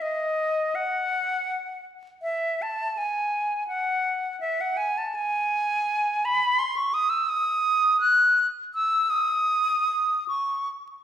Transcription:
0.02 0.77 D#5 medium
0.75 1.86 F#5 medium
2.22 2.63 E5 medium
2.62 2.99 A5 medium
2.98 3.67 G#5 medium
3.68 4.39 F#5 medium
4.41 4.62 E5 medium
4.61 4.79 F#5 medium
4.77 4.99 G#5 medium
4.98 5.17 A5 medium
5.15 6.27 G#5 loud
6.25 6.60 B5 medium
6.59 6.78 C6 medium
6.77 6.95 C#6 medium
6.94 7.11 D#6 medium
7.09 7.31 E6 medium
7.29 8.00 D#6 loud
8.01 8.47 F#6 medium
8.75 9.11 E6 loud
9.10 10.28 D#6 medium
10.28 10.69 C#6 medium

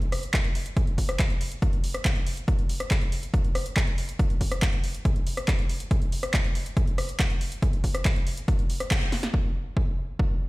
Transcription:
0.02 closed hi-hat soft
0.12 cross-stick medium
0.12 open hi-hat loud
0.23 closed hi-hat soft
0.34 kick loud
0.34 clap loud
0.34 closed hi-hat soft
0.44 closed hi-hat soft
0.55 open hi-hat loud
0.66 closed hi-hat soft
0.77 kick loud
0.77 closed hi-hat soft
0.87 closed hi-hat soft
0.98 kick medium
0.98 open hi-hat loud
1.09 cross-stick medium
1.09 closed hi-hat soft
1.19 kick loud
1.19 clap loud
1.19 closed hi-hat soft
1.30 closed hi-hat soft
1.41 open hi-hat loud
1.52 closed hi-hat soft
1.62 kick loud
1.62 closed hi-hat soft
1.73 closed hi-hat soft
1.84 open hi-hat loud
1.94 cross-stick medium
1.94 closed hi-hat soft
2.05 kick loud
2.05 clap loud
2.05 closed hi-hat soft
2.16 closed hi-hat soft
2.27 open hi-hat loud
2.37 closed hi-hat soft
2.48 kick loud
2.48 closed hi-hat soft
2.59 closed hi-hat soft
2.69 open hi-hat loud
2.80 cross-stick medium
2.80 closed hi-hat soft
2.91 kick loud
2.91 clap loud
2.91 closed hi-hat soft
3.02 closed hi-hat soft
3.12 open hi-hat loud
3.23 closed hi-hat soft
3.34 kick loud
3.34 closed hi-hat soft
3.44 closed hi-hat soft
3.55 cross-stick medium
3.55 open hi-hat loud
3.66 closed hi-hat soft
3.77 kick loud
3.77 clap loud
3.77 closed hi-hat soft
3.87 closed hi-hat soft
3.98 open hi-hat loud
4.09 closed hi-hat soft
4.19 kick loud
4.19 closed hi-hat medium
4.30 closed hi-hat soft
4.41 kick medium
4.41 open hi-hat loud
4.52 cross-stick medium
4.52 closed hi-hat medium
4.62 kick loud
4.62 clap loud
4.62 closed hi-hat medium
4.73 closed hi-hat soft
4.84 open hi-hat loud
4.94 closed hi-hat soft
5.05 kick loud
5.05 closed hi-hat medium
5.16 closed hi-hat soft
5.27 open hi-hat loud
5.37 cross-stick medium
5.37 closed hi-hat medium
5.48 kick loud
5.48 clap loud
5.48 closed hi-hat medium
5.59 closed hi-hat soft
5.69 open hi-hat loud
5.80 closed hi-hat medium
5.91 kick loud
5.91 closed hi-hat medium
6.02 closed hi-hat soft
6.12 open hi-hat loud
6.23 cross-stick medium
6.23 closed hi-hat medium
6.34 kick loud
6.34 clap loud
6.34 closed hi-hat medium
6.44 closed hi-hat soft
6.55 open hi-hat loud
6.66 closed hi-hat medium
6.77 kick loud
6.77 closed hi-hat medium
6.87 closed hi-hat soft
6.98 cross-stick medium
6.98 open hi-hat loud
7.09 closed hi-hat medium
7.20 kick loud
7.20 clap loud
7.20 closed hi-hat medium
7.30 closed hi-hat soft
7.41 open hi-hat loud
7.52 closed hi-hat medium
7.62 kick loud
7.62 closed hi-hat medium
7.73 closed hi-hat soft
7.84 kick medium
7.84 open hi-hat loud
7.95 cross-stick medium
7.95 closed hi-hat medium
8.05 kick loud
8.05 clap loud
8.05 closed hi-hat medium
8.16 closed hi-hat soft
8.27 open hi-hat loud
8.37 closed hi-hat medium
8.48 kick loud
8.48 closed hi-hat medium
8.59 closed hi-hat soft
8.70 open hi-hat loud
8.80 cross-stick medium
8.80 closed hi-hat medium
8.91 kick loud
8.91 clap loud
8.91 closed hi-hat medium
9.02 closed hi-hat soft
9.12 snare medium
9.12 open hi-hat loud
9.23 snare medium
9.23 closed hi-hat medium
9.34 kick loud
9.77 kick loud
10.19 kick loud

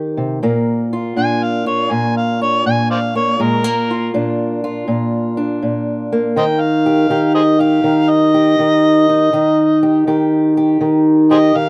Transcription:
0.00 0.42 D#3 medium
0.00 0.39 D#4 medium
0.00 0.39 G4 medium
0.17 0.42 C3 medium
0.43 1.16 A#2 medium
0.43 3.15 A#3 medium
0.93 1.66 F4 medium
1.16 1.90 A#2 medium
1.16 2.40 D4 medium
1.16 1.44 G#5 medium
1.43 1.66 F5 medium
1.66 3.88 F4 medium
1.66 1.93 C#5 medium
1.91 2.65 A#2 medium
1.91 2.15 G#5 loud
2.17 2.40 F5 medium
2.41 3.37 D4 medium
2.41 2.65 C#5 medium
2.66 3.38 A#2 medium
2.66 2.89 G#5 medium
2.91 2.98 C5 medium
2.91 2.99 D5 medium
2.91 3.14 F5 medium
3.15 3.39 A#3 medium
3.15 3.42 C#5 medium
3.40 4.13 A#2 medium
3.40 3.64 G#3 medium
3.40 4.12 A#4 medium
3.64 6.11 A#3 medium
3.90 4.63 F4 medium
4.14 4.86 A#2 medium
4.14 5.36 D4 medium
4.64 6.36 F4 medium
4.88 5.61 A#2 medium
5.37 6.33 D4 medium
5.62 6.36 A#2 medium
6.12 9.62 A#3 medium
6.36 7.09 D#3 medium
6.36 9.08 D#4 medium
6.36 6.44 C5 medium
6.36 6.44 D#5 medium
6.36 6.62 G5 medium
6.60 7.32 F5 loud
6.86 7.10 G4 medium
7.10 7.83 D#3 medium
7.10 7.60 G4 medium
7.35 7.43 G#4 medium
7.35 7.41 C5 medium
7.35 7.61 D#5 medium
7.60 8.33 G4 medium
7.60 8.11 F5 medium
7.84 8.58 D#3 medium
8.10 10.27 D#5 loud
8.34 9.29 G4 medium
8.59 9.32 D#3 medium
9.09 9.30 D#4 medium
9.33 10.06 D#3 medium
9.33 11.69 D#4 medium
9.83 10.06 G4 medium
10.07 10.79 D#3 medium
10.07 10.56 G4 medium
10.57 11.30 G4 medium
10.81 11.54 D#3 medium
11.31 11.69 G4 medium
11.31 11.37 G#4 medium
11.31 11.38 C5 medium
11.31 11.58 D#5 medium
11.55 11.69 D#3 medium
11.55 11.69 F5 loud

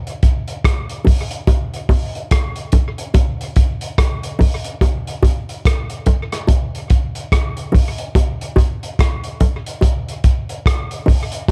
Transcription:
0.07 closed hi-hat soft
0.23 kick loud
0.23 closed hi-hat medium
0.48 closed hi-hat soft
0.65 kick loud
0.65 cross-stick loud
0.65 closed hi-hat medium
0.89 closed hi-hat soft
1.05 kick medium
1.05 open hi-hat medium
1.05 high bongo soft
1.05 low bongo medium
1.31 closed hi-hat medium
1.47 kick loud
1.47 closed hi-hat medium
1.47 high bongo medium
1.74 closed hi-hat soft
1.89 kick medium
1.89 open hi-hat soft
1.89 high bongo medium
2.15 closed hi-hat soft
2.31 kick loud
2.31 cross-stick loud
2.31 closed hi-hat medium
2.56 closed hi-hat soft
2.72 kick medium
2.72 closed hi-hat medium
2.72 low bongo medium
2.98 closed hi-hat medium
3.14 kick loud
3.14 closed hi-hat medium
3.14 high bongo medium
3.41 closed hi-hat soft
3.56 kick medium
3.56 closed hi-hat medium
3.81 closed hi-hat medium
3.98 kick loud
3.98 cross-stick loud
3.98 closed hi-hat medium
4.23 closed hi-hat soft
4.39 kick medium
4.39 open hi-hat medium
4.39 high bongo soft
4.39 low bongo medium
4.64 closed hi-hat medium
4.81 kick loud
4.81 closed hi-hat medium
4.81 high bongo medium
5.07 closed hi-hat medium
5.23 kick medium
5.23 closed hi-hat medium
5.23 high bongo medium
5.49 closed hi-hat soft
5.65 kick loud
5.65 cross-stick loud
5.65 closed hi-hat medium
5.90 closed hi-hat soft
6.06 kick medium
6.06 closed hi-hat medium
6.06 low bongo medium
6.32 cross-stick medium
6.32 closed hi-hat medium
6.47 kick loud
6.47 closed hi-hat medium
6.47 high bongo medium
6.75 closed hi-hat soft
6.90 kick medium
6.90 closed hi-hat medium
7.15 closed hi-hat medium
7.32 kick loud
7.32 cross-stick loud
7.32 closed hi-hat medium
7.57 closed hi-hat soft
7.72 kick medium
7.72 open hi-hat medium
7.72 high bongo soft
7.72 low bongo medium
7.98 closed hi-hat medium
8.15 kick loud
8.15 closed hi-hat medium
8.15 high bongo medium
8.41 closed hi-hat medium
8.56 kick medium
8.56 closed hi-hat medium
8.56 high bongo medium
8.83 closed hi-hat soft
8.99 kick loud
8.99 cross-stick loud
8.99 closed hi-hat medium
9.24 closed hi-hat soft
9.40 kick medium
9.40 closed hi-hat medium
9.40 low bongo medium
9.66 closed hi-hat medium
9.81 kick loud
9.81 closed hi-hat loud
9.81 high bongo medium
10.08 closed hi-hat soft
10.24 kick medium
10.24 closed hi-hat medium
10.49 closed hi-hat medium
10.66 kick loud
10.66 cross-stick loud
10.66 closed hi-hat medium
10.91 closed hi-hat medium
11.06 kick medium
11.06 open hi-hat medium
11.06 high bongo soft
11.06 low bongo medium
11.32 closed hi-hat medium
11.48 kick loud

